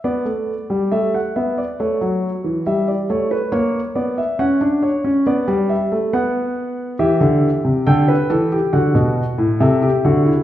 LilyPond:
<<
  \new Staff \with { instrumentName = "Grand piano" } { \time 4/4 \key b \phrygian \tempo 4 = 69 d''4 e''16 fis''16 e''16 d''16 cis''4 e''16 d''16 cis''16 b'16 | cis''8 d''16 e''16 fis''8 cis''8 d''8 e''8 fis''4 | e''4 g''4 fis''4 e''4 | }
  \new Staff \with { instrumentName = "Grand piano" } { \time 4/4 \key b \phrygian << { b16 a8 g16 a8 b8 a16 fis8 e16 g8 a8 | ais8 b8 cis'16 d'8 cis'16 b16 g8 a16 b4 | g'4 a'16 b'16 a'16 g'16 fis'4 a'16 g'16 fis'16 e'16 | } \\ { r1 | r1 | e16 d8 c16 d8 e8 d16 b,8 a,16 c8 d8 | } >> }
>>